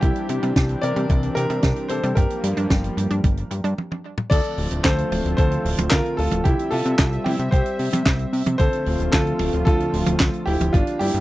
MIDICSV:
0, 0, Header, 1, 6, 480
1, 0, Start_track
1, 0, Key_signature, -1, "minor"
1, 0, Tempo, 535714
1, 22, Time_signature, 4, 2, 24, 8
1, 10039, End_track
2, 0, Start_track
2, 0, Title_t, "Grand piano"
2, 0, Program_c, 0, 0
2, 10, Note_on_c, 0, 67, 93
2, 30, Note_on_c, 0, 64, 74
2, 711, Note_off_c, 0, 64, 0
2, 730, Note_on_c, 0, 74, 107
2, 751, Note_on_c, 0, 70, 81
2, 758, Note_off_c, 0, 67, 0
2, 1194, Note_off_c, 0, 70, 0
2, 1210, Note_on_c, 0, 70, 105
2, 1229, Note_on_c, 0, 67, 71
2, 1231, Note_off_c, 0, 74, 0
2, 1672, Note_off_c, 0, 67, 0
2, 1689, Note_on_c, 0, 72, 93
2, 1709, Note_on_c, 0, 69, 72
2, 1711, Note_off_c, 0, 70, 0
2, 1929, Note_off_c, 0, 69, 0
2, 1929, Note_on_c, 0, 70, 83
2, 1943, Note_off_c, 0, 72, 0
2, 1949, Note_on_c, 0, 67, 68
2, 3340, Note_off_c, 0, 70, 0
2, 3350, Note_off_c, 0, 67, 0
2, 3850, Note_on_c, 0, 74, 113
2, 3870, Note_on_c, 0, 69, 85
2, 4302, Note_off_c, 0, 74, 0
2, 4313, Note_off_c, 0, 69, 0
2, 4331, Note_on_c, 0, 72, 105
2, 4351, Note_on_c, 0, 69, 84
2, 4793, Note_off_c, 0, 69, 0
2, 4796, Note_off_c, 0, 72, 0
2, 4810, Note_on_c, 0, 72, 105
2, 4830, Note_on_c, 0, 69, 84
2, 5262, Note_off_c, 0, 72, 0
2, 5273, Note_off_c, 0, 69, 0
2, 5288, Note_on_c, 0, 70, 99
2, 5308, Note_on_c, 0, 65, 78
2, 5518, Note_off_c, 0, 70, 0
2, 5529, Note_off_c, 0, 65, 0
2, 5529, Note_on_c, 0, 69, 93
2, 5548, Note_on_c, 0, 65, 75
2, 5769, Note_off_c, 0, 65, 0
2, 5770, Note_on_c, 0, 67, 93
2, 5783, Note_off_c, 0, 69, 0
2, 5790, Note_on_c, 0, 64, 77
2, 6008, Note_on_c, 0, 69, 96
2, 6010, Note_off_c, 0, 64, 0
2, 6023, Note_off_c, 0, 67, 0
2, 6029, Note_on_c, 0, 65, 74
2, 6472, Note_off_c, 0, 65, 0
2, 6490, Note_on_c, 0, 67, 88
2, 6510, Note_off_c, 0, 69, 0
2, 6510, Note_on_c, 0, 64, 70
2, 6545, Note_off_c, 0, 67, 0
2, 6563, Note_off_c, 0, 64, 0
2, 6729, Note_on_c, 0, 72, 90
2, 6749, Note_on_c, 0, 67, 72
2, 7420, Note_off_c, 0, 72, 0
2, 7430, Note_off_c, 0, 67, 0
2, 7688, Note_on_c, 0, 72, 115
2, 7710, Note_on_c, 0, 69, 88
2, 8141, Note_off_c, 0, 72, 0
2, 8153, Note_off_c, 0, 69, 0
2, 8168, Note_on_c, 0, 69, 104
2, 8189, Note_on_c, 0, 65, 82
2, 8632, Note_off_c, 0, 65, 0
2, 8634, Note_off_c, 0, 69, 0
2, 8647, Note_on_c, 0, 69, 107
2, 8669, Note_on_c, 0, 65, 83
2, 9350, Note_off_c, 0, 65, 0
2, 9368, Note_on_c, 0, 67, 95
2, 9390, Note_on_c, 0, 64, 75
2, 9397, Note_off_c, 0, 69, 0
2, 9610, Note_off_c, 0, 64, 0
2, 9610, Note_on_c, 0, 65, 95
2, 9623, Note_off_c, 0, 67, 0
2, 9631, Note_on_c, 0, 62, 74
2, 9850, Note_off_c, 0, 62, 0
2, 9851, Note_on_c, 0, 67, 97
2, 9864, Note_off_c, 0, 65, 0
2, 9872, Note_on_c, 0, 64, 79
2, 10039, Note_off_c, 0, 64, 0
2, 10039, Note_off_c, 0, 67, 0
2, 10039, End_track
3, 0, Start_track
3, 0, Title_t, "Analog synth pad"
3, 0, Program_c, 1, 89
3, 0, Note_on_c, 1, 55, 78
3, 0, Note_on_c, 1, 67, 87
3, 24, Note_on_c, 1, 62, 74
3, 25, Note_on_c, 1, 52, 83
3, 25, Note_on_c, 1, 60, 77
3, 1906, Note_off_c, 1, 55, 0
3, 1924, Note_off_c, 1, 52, 0
3, 1924, Note_off_c, 1, 60, 0
3, 1943, Note_on_c, 1, 53, 84
3, 1943, Note_on_c, 1, 55, 76
3, 1943, Note_on_c, 1, 58, 77
3, 3346, Note_off_c, 1, 67, 0
3, 3350, Note_off_c, 1, 62, 0
3, 3368, Note_off_c, 1, 53, 0
3, 3368, Note_off_c, 1, 55, 0
3, 3368, Note_off_c, 1, 58, 0
3, 3862, Note_on_c, 1, 65, 90
3, 3863, Note_on_c, 1, 57, 78
3, 3863, Note_on_c, 1, 60, 77
3, 3864, Note_on_c, 1, 50, 82
3, 3864, Note_on_c, 1, 53, 75
3, 5763, Note_off_c, 1, 65, 0
3, 5764, Note_off_c, 1, 50, 0
3, 5764, Note_off_c, 1, 53, 0
3, 5764, Note_off_c, 1, 57, 0
3, 5764, Note_off_c, 1, 60, 0
3, 5783, Note_on_c, 1, 55, 88
3, 5783, Note_on_c, 1, 76, 94
3, 5784, Note_on_c, 1, 60, 80
3, 7683, Note_off_c, 1, 55, 0
3, 7684, Note_off_c, 1, 76, 0
3, 7702, Note_on_c, 1, 53, 77
3, 7702, Note_on_c, 1, 57, 79
3, 7702, Note_on_c, 1, 65, 96
3, 7703, Note_on_c, 1, 50, 84
3, 9587, Note_off_c, 1, 60, 0
3, 9603, Note_off_c, 1, 50, 0
3, 9603, Note_off_c, 1, 53, 0
3, 9603, Note_off_c, 1, 57, 0
3, 9603, Note_off_c, 1, 65, 0
3, 9623, Note_on_c, 1, 62, 90
3, 9624, Note_on_c, 1, 55, 84
3, 9624, Note_on_c, 1, 58, 76
3, 10039, Note_off_c, 1, 55, 0
3, 10039, Note_off_c, 1, 58, 0
3, 10039, Note_off_c, 1, 62, 0
3, 10039, End_track
4, 0, Start_track
4, 0, Title_t, "Synth arpeggio sound"
4, 0, Program_c, 2, 84
4, 23, Note_on_c, 2, 48, 80
4, 102, Note_off_c, 2, 48, 0
4, 264, Note_on_c, 2, 48, 78
4, 310, Note_off_c, 2, 48, 0
4, 383, Note_on_c, 2, 55, 101
4, 462, Note_off_c, 2, 55, 0
4, 504, Note_on_c, 2, 48, 80
4, 582, Note_off_c, 2, 48, 0
4, 744, Note_on_c, 2, 48, 78
4, 790, Note_off_c, 2, 48, 0
4, 863, Note_on_c, 2, 55, 106
4, 941, Note_off_c, 2, 55, 0
4, 983, Note_on_c, 2, 48, 77
4, 1062, Note_off_c, 2, 48, 0
4, 1223, Note_on_c, 2, 48, 76
4, 1270, Note_off_c, 2, 48, 0
4, 1343, Note_on_c, 2, 55, 98
4, 1422, Note_off_c, 2, 55, 0
4, 1465, Note_on_c, 2, 48, 86
4, 1542, Note_off_c, 2, 48, 0
4, 1704, Note_on_c, 2, 48, 77
4, 1750, Note_off_c, 2, 48, 0
4, 1823, Note_on_c, 2, 55, 103
4, 1902, Note_off_c, 2, 55, 0
4, 1943, Note_on_c, 2, 55, 79
4, 2022, Note_off_c, 2, 55, 0
4, 2183, Note_on_c, 2, 55, 78
4, 2230, Note_off_c, 2, 55, 0
4, 2303, Note_on_c, 2, 62, 101
4, 2382, Note_off_c, 2, 62, 0
4, 2424, Note_on_c, 2, 55, 79
4, 2502, Note_off_c, 2, 55, 0
4, 2663, Note_on_c, 2, 55, 78
4, 2710, Note_off_c, 2, 55, 0
4, 2783, Note_on_c, 2, 62, 102
4, 2862, Note_off_c, 2, 62, 0
4, 2903, Note_on_c, 2, 55, 81
4, 2981, Note_off_c, 2, 55, 0
4, 3143, Note_on_c, 2, 55, 78
4, 3190, Note_off_c, 2, 55, 0
4, 3262, Note_on_c, 2, 62, 102
4, 3341, Note_off_c, 2, 62, 0
4, 10039, End_track
5, 0, Start_track
5, 0, Title_t, "Analog synth bass"
5, 0, Program_c, 3, 38
5, 22, Note_on_c, 3, 36, 92
5, 112, Note_off_c, 3, 36, 0
5, 263, Note_on_c, 3, 48, 84
5, 353, Note_off_c, 3, 48, 0
5, 384, Note_on_c, 3, 48, 97
5, 473, Note_off_c, 3, 48, 0
5, 503, Note_on_c, 3, 36, 88
5, 683, Note_off_c, 3, 36, 0
5, 744, Note_on_c, 3, 48, 88
5, 834, Note_off_c, 3, 48, 0
5, 864, Note_on_c, 3, 48, 87
5, 954, Note_off_c, 3, 48, 0
5, 983, Note_on_c, 3, 36, 106
5, 1163, Note_off_c, 3, 36, 0
5, 1224, Note_on_c, 3, 48, 102
5, 1314, Note_off_c, 3, 48, 0
5, 1345, Note_on_c, 3, 48, 93
5, 1434, Note_off_c, 3, 48, 0
5, 1462, Note_on_c, 3, 36, 90
5, 1553, Note_off_c, 3, 36, 0
5, 1704, Note_on_c, 3, 48, 92
5, 1793, Note_off_c, 3, 48, 0
5, 1824, Note_on_c, 3, 48, 97
5, 1913, Note_off_c, 3, 48, 0
5, 1942, Note_on_c, 3, 31, 95
5, 2033, Note_off_c, 3, 31, 0
5, 2184, Note_on_c, 3, 43, 84
5, 2274, Note_off_c, 3, 43, 0
5, 2305, Note_on_c, 3, 43, 101
5, 2394, Note_off_c, 3, 43, 0
5, 2422, Note_on_c, 3, 31, 80
5, 2603, Note_off_c, 3, 31, 0
5, 2663, Note_on_c, 3, 43, 86
5, 2753, Note_off_c, 3, 43, 0
5, 2784, Note_on_c, 3, 43, 83
5, 2874, Note_off_c, 3, 43, 0
5, 2903, Note_on_c, 3, 31, 85
5, 3083, Note_off_c, 3, 31, 0
5, 3144, Note_on_c, 3, 43, 90
5, 3234, Note_off_c, 3, 43, 0
5, 3263, Note_on_c, 3, 43, 101
5, 3353, Note_off_c, 3, 43, 0
5, 3862, Note_on_c, 3, 38, 99
5, 3953, Note_off_c, 3, 38, 0
5, 4103, Note_on_c, 3, 26, 86
5, 4193, Note_off_c, 3, 26, 0
5, 4223, Note_on_c, 3, 26, 100
5, 4313, Note_off_c, 3, 26, 0
5, 4343, Note_on_c, 3, 38, 89
5, 4523, Note_off_c, 3, 38, 0
5, 4583, Note_on_c, 3, 26, 85
5, 4673, Note_off_c, 3, 26, 0
5, 4703, Note_on_c, 3, 26, 82
5, 4793, Note_off_c, 3, 26, 0
5, 4822, Note_on_c, 3, 38, 106
5, 5003, Note_off_c, 3, 38, 0
5, 5062, Note_on_c, 3, 26, 108
5, 5152, Note_off_c, 3, 26, 0
5, 5182, Note_on_c, 3, 26, 94
5, 5273, Note_off_c, 3, 26, 0
5, 5302, Note_on_c, 3, 38, 93
5, 5392, Note_off_c, 3, 38, 0
5, 5542, Note_on_c, 3, 26, 92
5, 5632, Note_off_c, 3, 26, 0
5, 5663, Note_on_c, 3, 26, 98
5, 5753, Note_off_c, 3, 26, 0
5, 5781, Note_on_c, 3, 36, 102
5, 5872, Note_off_c, 3, 36, 0
5, 6022, Note_on_c, 3, 48, 86
5, 6112, Note_off_c, 3, 48, 0
5, 6142, Note_on_c, 3, 48, 102
5, 6233, Note_off_c, 3, 48, 0
5, 6262, Note_on_c, 3, 36, 85
5, 6443, Note_off_c, 3, 36, 0
5, 6502, Note_on_c, 3, 48, 89
5, 6593, Note_off_c, 3, 48, 0
5, 6623, Note_on_c, 3, 48, 86
5, 6713, Note_off_c, 3, 48, 0
5, 6741, Note_on_c, 3, 36, 101
5, 6832, Note_off_c, 3, 36, 0
5, 6983, Note_on_c, 3, 48, 88
5, 7073, Note_off_c, 3, 48, 0
5, 7103, Note_on_c, 3, 48, 95
5, 7193, Note_off_c, 3, 48, 0
5, 7221, Note_on_c, 3, 36, 91
5, 7402, Note_off_c, 3, 36, 0
5, 7462, Note_on_c, 3, 48, 89
5, 7552, Note_off_c, 3, 48, 0
5, 7583, Note_on_c, 3, 48, 82
5, 7673, Note_off_c, 3, 48, 0
5, 7701, Note_on_c, 3, 38, 100
5, 7792, Note_off_c, 3, 38, 0
5, 7942, Note_on_c, 3, 26, 90
5, 8032, Note_off_c, 3, 26, 0
5, 8061, Note_on_c, 3, 26, 101
5, 8152, Note_off_c, 3, 26, 0
5, 8182, Note_on_c, 3, 38, 83
5, 8363, Note_off_c, 3, 38, 0
5, 8423, Note_on_c, 3, 26, 88
5, 8513, Note_off_c, 3, 26, 0
5, 8542, Note_on_c, 3, 26, 85
5, 8632, Note_off_c, 3, 26, 0
5, 8662, Note_on_c, 3, 38, 104
5, 8843, Note_off_c, 3, 38, 0
5, 8903, Note_on_c, 3, 26, 105
5, 8993, Note_off_c, 3, 26, 0
5, 9022, Note_on_c, 3, 26, 96
5, 9113, Note_off_c, 3, 26, 0
5, 9142, Note_on_c, 3, 38, 94
5, 9233, Note_off_c, 3, 38, 0
5, 9382, Note_on_c, 3, 26, 96
5, 9473, Note_off_c, 3, 26, 0
5, 9502, Note_on_c, 3, 26, 104
5, 9592, Note_off_c, 3, 26, 0
5, 9623, Note_on_c, 3, 31, 103
5, 9713, Note_off_c, 3, 31, 0
5, 9863, Note_on_c, 3, 43, 89
5, 9953, Note_off_c, 3, 43, 0
5, 9982, Note_on_c, 3, 43, 103
5, 10039, Note_off_c, 3, 43, 0
5, 10039, End_track
6, 0, Start_track
6, 0, Title_t, "Drums"
6, 19, Note_on_c, 9, 42, 76
6, 22, Note_on_c, 9, 36, 107
6, 109, Note_off_c, 9, 42, 0
6, 112, Note_off_c, 9, 36, 0
6, 139, Note_on_c, 9, 42, 52
6, 229, Note_off_c, 9, 42, 0
6, 259, Note_on_c, 9, 42, 90
6, 349, Note_off_c, 9, 42, 0
6, 382, Note_on_c, 9, 42, 51
6, 471, Note_off_c, 9, 42, 0
6, 500, Note_on_c, 9, 42, 76
6, 503, Note_on_c, 9, 36, 98
6, 503, Note_on_c, 9, 38, 112
6, 590, Note_off_c, 9, 42, 0
6, 592, Note_off_c, 9, 36, 0
6, 593, Note_off_c, 9, 38, 0
6, 618, Note_on_c, 9, 42, 49
6, 707, Note_off_c, 9, 42, 0
6, 744, Note_on_c, 9, 42, 108
6, 834, Note_off_c, 9, 42, 0
6, 864, Note_on_c, 9, 42, 50
6, 954, Note_off_c, 9, 42, 0
6, 983, Note_on_c, 9, 36, 113
6, 983, Note_on_c, 9, 42, 74
6, 1072, Note_off_c, 9, 36, 0
6, 1072, Note_off_c, 9, 42, 0
6, 1101, Note_on_c, 9, 42, 51
6, 1190, Note_off_c, 9, 42, 0
6, 1223, Note_on_c, 9, 42, 105
6, 1313, Note_off_c, 9, 42, 0
6, 1341, Note_on_c, 9, 42, 52
6, 1431, Note_off_c, 9, 42, 0
6, 1456, Note_on_c, 9, 42, 83
6, 1460, Note_on_c, 9, 38, 99
6, 1463, Note_on_c, 9, 36, 95
6, 1546, Note_off_c, 9, 42, 0
6, 1550, Note_off_c, 9, 38, 0
6, 1552, Note_off_c, 9, 36, 0
6, 1580, Note_on_c, 9, 42, 53
6, 1669, Note_off_c, 9, 42, 0
6, 1696, Note_on_c, 9, 42, 95
6, 1786, Note_off_c, 9, 42, 0
6, 1824, Note_on_c, 9, 42, 57
6, 1913, Note_off_c, 9, 42, 0
6, 1941, Note_on_c, 9, 42, 74
6, 1942, Note_on_c, 9, 36, 107
6, 2030, Note_off_c, 9, 42, 0
6, 2032, Note_off_c, 9, 36, 0
6, 2063, Note_on_c, 9, 42, 56
6, 2153, Note_off_c, 9, 42, 0
6, 2183, Note_on_c, 9, 42, 111
6, 2272, Note_off_c, 9, 42, 0
6, 2303, Note_on_c, 9, 42, 55
6, 2393, Note_off_c, 9, 42, 0
6, 2422, Note_on_c, 9, 36, 98
6, 2422, Note_on_c, 9, 38, 105
6, 2424, Note_on_c, 9, 42, 71
6, 2512, Note_off_c, 9, 36, 0
6, 2512, Note_off_c, 9, 38, 0
6, 2514, Note_off_c, 9, 42, 0
6, 2544, Note_on_c, 9, 42, 56
6, 2634, Note_off_c, 9, 42, 0
6, 2669, Note_on_c, 9, 42, 105
6, 2758, Note_off_c, 9, 42, 0
6, 2782, Note_on_c, 9, 42, 53
6, 2872, Note_off_c, 9, 42, 0
6, 2902, Note_on_c, 9, 42, 77
6, 2903, Note_on_c, 9, 36, 118
6, 2992, Note_off_c, 9, 36, 0
6, 2992, Note_off_c, 9, 42, 0
6, 3022, Note_on_c, 9, 42, 53
6, 3111, Note_off_c, 9, 42, 0
6, 3144, Note_on_c, 9, 42, 97
6, 3234, Note_off_c, 9, 42, 0
6, 3269, Note_on_c, 9, 42, 55
6, 3358, Note_off_c, 9, 42, 0
6, 3390, Note_on_c, 9, 48, 55
6, 3479, Note_off_c, 9, 48, 0
6, 3510, Note_on_c, 9, 48, 55
6, 3599, Note_off_c, 9, 48, 0
6, 3743, Note_on_c, 9, 45, 78
6, 3832, Note_off_c, 9, 45, 0
6, 3862, Note_on_c, 9, 36, 115
6, 3869, Note_on_c, 9, 49, 97
6, 3870, Note_on_c, 9, 42, 85
6, 3952, Note_off_c, 9, 36, 0
6, 3959, Note_off_c, 9, 42, 0
6, 3959, Note_off_c, 9, 49, 0
6, 3977, Note_on_c, 9, 42, 61
6, 4067, Note_off_c, 9, 42, 0
6, 4102, Note_on_c, 9, 46, 101
6, 4192, Note_off_c, 9, 46, 0
6, 4218, Note_on_c, 9, 42, 60
6, 4307, Note_off_c, 9, 42, 0
6, 4340, Note_on_c, 9, 42, 75
6, 4342, Note_on_c, 9, 36, 102
6, 4342, Note_on_c, 9, 38, 118
6, 4344, Note_on_c, 9, 39, 104
6, 4430, Note_off_c, 9, 42, 0
6, 4432, Note_off_c, 9, 36, 0
6, 4432, Note_off_c, 9, 38, 0
6, 4433, Note_off_c, 9, 39, 0
6, 4466, Note_on_c, 9, 42, 59
6, 4555, Note_off_c, 9, 42, 0
6, 4586, Note_on_c, 9, 46, 98
6, 4589, Note_on_c, 9, 48, 78
6, 4676, Note_off_c, 9, 46, 0
6, 4678, Note_off_c, 9, 48, 0
6, 4710, Note_on_c, 9, 42, 52
6, 4799, Note_off_c, 9, 42, 0
6, 4822, Note_on_c, 9, 36, 122
6, 4823, Note_on_c, 9, 42, 81
6, 4912, Note_off_c, 9, 36, 0
6, 4913, Note_off_c, 9, 42, 0
6, 4942, Note_on_c, 9, 42, 55
6, 5031, Note_off_c, 9, 42, 0
6, 5066, Note_on_c, 9, 46, 112
6, 5156, Note_off_c, 9, 46, 0
6, 5183, Note_on_c, 9, 42, 61
6, 5184, Note_on_c, 9, 48, 81
6, 5273, Note_off_c, 9, 42, 0
6, 5274, Note_off_c, 9, 48, 0
6, 5291, Note_on_c, 9, 39, 113
6, 5300, Note_on_c, 9, 38, 118
6, 5301, Note_on_c, 9, 42, 81
6, 5302, Note_on_c, 9, 36, 104
6, 5380, Note_off_c, 9, 39, 0
6, 5390, Note_off_c, 9, 38, 0
6, 5391, Note_off_c, 9, 36, 0
6, 5391, Note_off_c, 9, 42, 0
6, 5427, Note_on_c, 9, 42, 50
6, 5516, Note_off_c, 9, 42, 0
6, 5541, Note_on_c, 9, 46, 102
6, 5631, Note_off_c, 9, 46, 0
6, 5657, Note_on_c, 9, 48, 72
6, 5665, Note_on_c, 9, 42, 66
6, 5747, Note_off_c, 9, 48, 0
6, 5754, Note_off_c, 9, 42, 0
6, 5782, Note_on_c, 9, 36, 123
6, 5783, Note_on_c, 9, 42, 78
6, 5871, Note_off_c, 9, 36, 0
6, 5873, Note_off_c, 9, 42, 0
6, 5906, Note_on_c, 9, 42, 61
6, 5995, Note_off_c, 9, 42, 0
6, 6013, Note_on_c, 9, 46, 114
6, 6102, Note_off_c, 9, 46, 0
6, 6141, Note_on_c, 9, 42, 49
6, 6230, Note_off_c, 9, 42, 0
6, 6259, Note_on_c, 9, 38, 127
6, 6262, Note_on_c, 9, 36, 111
6, 6262, Note_on_c, 9, 39, 107
6, 6266, Note_on_c, 9, 42, 84
6, 6349, Note_off_c, 9, 38, 0
6, 6351, Note_off_c, 9, 36, 0
6, 6351, Note_off_c, 9, 39, 0
6, 6356, Note_off_c, 9, 42, 0
6, 6386, Note_on_c, 9, 42, 57
6, 6475, Note_off_c, 9, 42, 0
6, 6504, Note_on_c, 9, 48, 81
6, 6509, Note_on_c, 9, 46, 102
6, 6594, Note_off_c, 9, 48, 0
6, 6598, Note_off_c, 9, 46, 0
6, 6625, Note_on_c, 9, 42, 57
6, 6714, Note_off_c, 9, 42, 0
6, 6741, Note_on_c, 9, 36, 126
6, 6749, Note_on_c, 9, 42, 82
6, 6831, Note_off_c, 9, 36, 0
6, 6839, Note_off_c, 9, 42, 0
6, 6860, Note_on_c, 9, 42, 55
6, 6950, Note_off_c, 9, 42, 0
6, 6980, Note_on_c, 9, 46, 108
6, 7070, Note_off_c, 9, 46, 0
6, 7105, Note_on_c, 9, 42, 58
6, 7108, Note_on_c, 9, 48, 76
6, 7195, Note_off_c, 9, 42, 0
6, 7198, Note_off_c, 9, 48, 0
6, 7214, Note_on_c, 9, 42, 75
6, 7220, Note_on_c, 9, 38, 124
6, 7221, Note_on_c, 9, 36, 110
6, 7225, Note_on_c, 9, 39, 100
6, 7304, Note_off_c, 9, 42, 0
6, 7310, Note_off_c, 9, 38, 0
6, 7311, Note_off_c, 9, 36, 0
6, 7315, Note_off_c, 9, 39, 0
6, 7339, Note_on_c, 9, 42, 52
6, 7429, Note_off_c, 9, 42, 0
6, 7465, Note_on_c, 9, 46, 104
6, 7554, Note_off_c, 9, 46, 0
6, 7581, Note_on_c, 9, 42, 59
6, 7585, Note_on_c, 9, 48, 80
6, 7671, Note_off_c, 9, 42, 0
6, 7674, Note_off_c, 9, 48, 0
6, 7701, Note_on_c, 9, 36, 119
6, 7702, Note_on_c, 9, 42, 79
6, 7791, Note_off_c, 9, 36, 0
6, 7792, Note_off_c, 9, 42, 0
6, 7821, Note_on_c, 9, 42, 52
6, 7910, Note_off_c, 9, 42, 0
6, 7941, Note_on_c, 9, 46, 102
6, 8030, Note_off_c, 9, 46, 0
6, 8063, Note_on_c, 9, 42, 54
6, 8153, Note_off_c, 9, 42, 0
6, 8182, Note_on_c, 9, 36, 113
6, 8182, Note_on_c, 9, 38, 112
6, 8184, Note_on_c, 9, 39, 104
6, 8184, Note_on_c, 9, 42, 78
6, 8272, Note_off_c, 9, 36, 0
6, 8272, Note_off_c, 9, 38, 0
6, 8273, Note_off_c, 9, 39, 0
6, 8273, Note_off_c, 9, 42, 0
6, 8304, Note_on_c, 9, 42, 49
6, 8393, Note_off_c, 9, 42, 0
6, 8416, Note_on_c, 9, 48, 86
6, 8420, Note_on_c, 9, 46, 105
6, 8506, Note_off_c, 9, 48, 0
6, 8510, Note_off_c, 9, 46, 0
6, 8538, Note_on_c, 9, 42, 53
6, 8628, Note_off_c, 9, 42, 0
6, 8660, Note_on_c, 9, 42, 72
6, 8662, Note_on_c, 9, 36, 125
6, 8750, Note_off_c, 9, 42, 0
6, 8752, Note_off_c, 9, 36, 0
6, 8784, Note_on_c, 9, 42, 54
6, 8874, Note_off_c, 9, 42, 0
6, 8903, Note_on_c, 9, 46, 108
6, 8992, Note_off_c, 9, 46, 0
6, 9018, Note_on_c, 9, 48, 83
6, 9022, Note_on_c, 9, 42, 60
6, 9108, Note_off_c, 9, 48, 0
6, 9111, Note_off_c, 9, 42, 0
6, 9136, Note_on_c, 9, 39, 101
6, 9140, Note_on_c, 9, 38, 127
6, 9140, Note_on_c, 9, 42, 79
6, 9142, Note_on_c, 9, 36, 110
6, 9225, Note_off_c, 9, 39, 0
6, 9229, Note_off_c, 9, 38, 0
6, 9230, Note_off_c, 9, 42, 0
6, 9232, Note_off_c, 9, 36, 0
6, 9260, Note_on_c, 9, 42, 55
6, 9350, Note_off_c, 9, 42, 0
6, 9382, Note_on_c, 9, 46, 101
6, 9472, Note_off_c, 9, 46, 0
6, 9499, Note_on_c, 9, 42, 57
6, 9506, Note_on_c, 9, 48, 74
6, 9589, Note_off_c, 9, 42, 0
6, 9596, Note_off_c, 9, 48, 0
6, 9623, Note_on_c, 9, 36, 117
6, 9626, Note_on_c, 9, 42, 75
6, 9712, Note_off_c, 9, 36, 0
6, 9716, Note_off_c, 9, 42, 0
6, 9740, Note_on_c, 9, 42, 59
6, 9829, Note_off_c, 9, 42, 0
6, 9860, Note_on_c, 9, 46, 115
6, 9949, Note_off_c, 9, 46, 0
6, 9986, Note_on_c, 9, 42, 54
6, 10039, Note_off_c, 9, 42, 0
6, 10039, End_track
0, 0, End_of_file